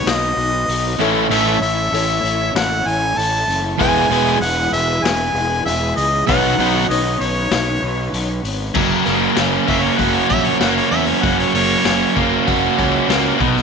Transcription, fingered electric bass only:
0.05 B1
0.36 B1
0.68 B1
1.00 A1
1.30 A1
1.61 A1
1.92 A1
2.23 A1
2.54 A1
2.86 A1
3.17 A1
3.48 F#1
3.80 E1
4.09 E1
4.41 E1
4.72 E1
5.03 E1
5.34 E1
5.66 E1
5.97 C#2
6.28 B1
6.58 B1
6.89 B1
7.20 B1
7.51 B1
7.82 B1
8.13 B1
8.43 G#1
8.75 F#1
9.06 F#1
9.37 F#1
9.68 F#1
9.99 F#1
10.30 A#1
10.60 F#1
10.91 E2
11.23 F#1
11.54 F#1
11.84 F#1
12.16 F#1
12.48 F#1
12.78 C#2
13.09 C#2
13.40 B1

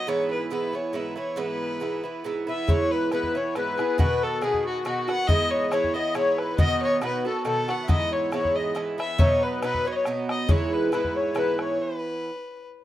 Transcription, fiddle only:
0.08 C#5
0.31 B4
0.52 B4
0.75 C#5
0.96 B4
1.17 C#5
1.39 B4
2.49 E5
2.70 C#5
2.91 B4
3.14 B4
3.36 C#5
3.56 B4
3.78 G#4
3.99 B4
4.23 A4
4.42 G#4
4.65 F#4
4.85 F#4
5.09 F#5
5.28 D#5
5.51 C#5
5.70 C#5
5.93 D#5
6.15 C#5
6.38 B4
6.58 D#5
6.82 C#5
7.04 B4
7.27 A4
7.46 A4
7.70 F#5
7.90 D#5
8.12 C#5
8.33 C#5
8.55 D#5
8.99 E5
9.19 C#5
9.43 B4
9.64 B4
9.87 C#5
9.92 D#5
9.96 C#5
10.30 D#5
10.51 C#5
10.73 B4
10.94 B4
11.16 C#5
11.38 B4
11.59 C#5
11.82 B4

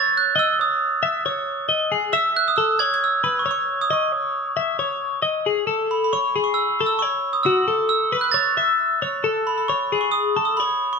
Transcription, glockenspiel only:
Already playing: A6
0.17 F#6
0.39 E6
0.61 D#6
2.13 E6
2.37 F#6
2.48 D#6
2.56 E6
2.79 G#6
2.94 G#6
3.04 E6
3.39 C#6
3.51 C#6
3.81 D#6
3.93 C#6
5.91 B5
6.04 B5
6.13 C#6
6.44 C#6
6.54 E6
6.86 E6
6.99 C#6
7.33 D#6
7.43 E6
7.89 E6
8.21 F#6
8.32 A6
9.47 B5
9.58 B5
9.68 C#6
10.01 C#6
10.12 D#6
10.45 D#6
10.57 B5
10.93 C#6

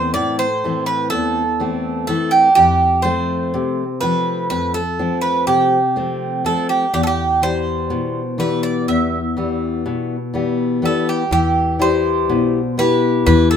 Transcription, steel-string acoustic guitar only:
Already playing: E2 E3 A3 C4
0.15 A2
0.64 E3 A3 C4
1.12 E2
1.60 E3 A3 C4
2.09 E3 A3 C4
2.57 F2
3.04 F3 A3 C4
3.54 C3
4.02 F3 A3 C4
4.51 F2
4.99 F3 A3 C4
5.47 C3
5.96 F3 A3 C4
6.45 F3 A3 C4
6.93 E2
7.42 E3 G3
7.90 B2
8.38 E3 G3 B3
8.88 E2
9.37 E3 G3 B3
9.86 B2
10.34 E3 G3 B3
10.82 E3 G3 B3
11.31 E3
11.79 G3 E4 G4
12.29 B2
12.78 B3 E4 G4
13.27 E3

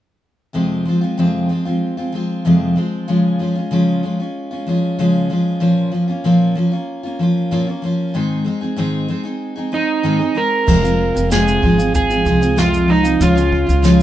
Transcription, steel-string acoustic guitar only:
0.53 F2 C3 F3 G#3 C4 F4
0.85 F3 G#3 C4 F4
1.01 F3 G#3 C4 F4
1.18 F2 C3 F3 G#3 C4 F4
1.49 F3 G#3 C4 F4
1.65 F3 G#3 C4 F4
1.97 F3 G#3 C4 F4
2.12 F3 G#3 C4 F4
2.45 F2 C3 F3 G#3 C4 F4
2.76 F3 G#3 C4 F4
3.08 C#3 F3 G#3 C#4 F4
3.39 F3 G#3 C#4 F4
3.55 G#3 C#4 F4
3.71 C#3 F3 G#3 C#4 F4
4.03 F3 G#3 C#4 F4
4.20 G#3 C#4 F4
4.51 G#3 C#4 F4
4.66 F3 G#3 C#4 F4
4.99 C#3 F3 G#3 C#4 F4
5.30 F3 G#3 C#4 F4
5.60 A#2 F3 A#3 C#4 F4
5.92 F3 A#3 C#4 F4
6.08 A#3 C#4 F4
6.24 A#2 F3 A#3 C#4 F4
6.55 F3 A#3 C#4 F4
6.72 A#3 C#4 F4
7.03 A#3 C#4 F4
7.19 F3 A#3 C#4 F4
7.51 A#2 F3 A#3 C#4 F4
7.67 A#3 C#4 F4
7.82 F3 A#3 C#4 F4
8.14 G#2 D#3 G#3 C4 D#4 G#4
8.45 G#3 C4 D#4 G#4
8.61 G#3 C4 D#4 G#4
8.76 G#2 D#3 G#3 C4 D#4 G#4
9.08 G#3 C4 D#4 G#4
9.23 G#3 C4 D#4 G#4
9.56 G#3 C4 D#4 G#4
9.72 G#3 C4 D#4 G#4
10.03 G#2 D#3 G#3 C4 D#4 G#4
10.19 G#3 C4 D#4 G#4
10.35 G#3 C4 D#4 G#4
10.66 F2 C3 F3 G#3 C4 F4
10.83 F3 G#3 C4 F4
11.15 F3 G#3 C4 F4
11.30 F2 C3 F3 G#3 C4 F4
11.62 F3 G#3 C4 F4
11.78 F3 G#3 C4 F4
12.10 F3 G#3 C4 F4
12.25 F3 G#3 C4 F4
12.41 F3 G#3 C4 F4
12.56 F2 C3 F3 G#3 C4 F4
12.88 F3 G#3 C4 F4
13.03 F3 G#3 C4 F4
13.20 C#3 F3 G#3 C#4 F4
13.35 G#3 C#4 F4
13.66 G#3 C#4 F4
13.82 C#3 F3 G#3 C#4 F4

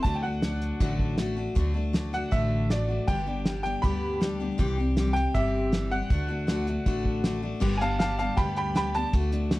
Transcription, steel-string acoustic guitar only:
0.04 D3 F#3 A3 D4 F#4
0.24 A3 D4 F#4
0.43 F#3 A3 D4 F#4
0.80 D3 F#3 A3 D4 F#4
1.18 F#3 A3 D4 F#4
1.36 A3 D4 F#4
1.55 D3 F#3 A3 D4 F#4
1.74 A3 D4 F#4
1.93 F#3 A3 D4 F#4
2.13 A3 D4 F#4
2.31 D3 F#3 A3 D4 F#4
2.71 F#3 A3 D4 F#4
2.89 A3 D4 F#4
3.08 G2 D3 G3 B3 D4 G4
3.27 G3 B3 D4 G4
3.46 G3 B3 D4 G4
3.64 G3 B3 D4 G4
3.83 G2 D3 G3 B3 D4 G4
4.21 G3 B3 D4 G4
4.40 G3 B3 D4 G4
4.58 C3 E3 G3 C4 G4
4.78 G3 C4 G4
4.97 E3 G3 C4 G4
5.16 G3 C4 G4
5.35 C3 E3 G3 C4 G4
5.72 E3 G3 C4 G4
5.91 G3 C4 G4
6.11 D3 A3 D4 F#4
6.28 A3 D4 F#4
6.47 D3 A3 D4 F#4
6.68 A3 D4 F#4
6.86 D3 A3 D4 F#4
7.24 D3 A3 D4 F#4
7.42 A3 D4 F#4
7.60 G2 D3 G3 B3 D4 G4
7.79 G3 B3 D4 G4
7.99 G3 B3 D4 G4
8.18 G3 B3 D4 G4
8.37 G2 D3 G3 B3 D4 G4
8.75 G3 B3 D4 G4
8.95 G3 B3 D4 G4
9.13 D3 A3 D4 F#4
9.32 A3 D4 F#4
9.51 D3 A3 D4 F#4

